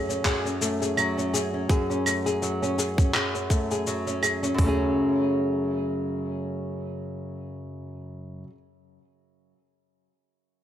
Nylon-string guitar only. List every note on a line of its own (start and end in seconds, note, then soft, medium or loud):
0.00 0.23 F#2 medium
0.00 0.97 F#3 medium
0.00 0.61 A3 medium
0.00 0.25 G#4 medium
0.09 0.45 C#4 medium
0.25 1.69 F#2 medium
0.25 0.81 G#4 medium
0.45 1.17 C#4 medium
0.61 2.06 A3 medium
0.82 1.33 G#4 medium
0.97 2.42 F#3 medium
1.18 1.53 C#4 medium
1.34 1.70 G#4 medium
1.54 1.89 C#4 medium
1.70 3.13 F#2 medium
1.70 2.26 G#4 medium
1.90 2.62 C#4 soft
2.06 3.50 A3 medium
2.26 2.78 G#4 medium
2.42 3.87 F#3 medium
2.62 2.98 C#4 medium
2.78 3.15 G#4 medium
2.99 3.34 C#4 medium
3.15 4.53 F#2 medium
3.15 3.71 G#4 medium
3.35 4.06 C#4 soft
3.51 4.63 A3 medium
3.71 4.22 G#4 medium
3.87 4.60 F#3 medium
4.07 4.42 C#4 medium
4.23 4.68 G#4 medium
4.43 4.65 C#4 medium
4.54 8.43 F#2 medium
4.54 8.47 C#3 medium
4.61 8.50 F#3 medium
4.61 8.52 A3 medium
4.66 8.55 C#4 medium
4.66 8.57 G#4 medium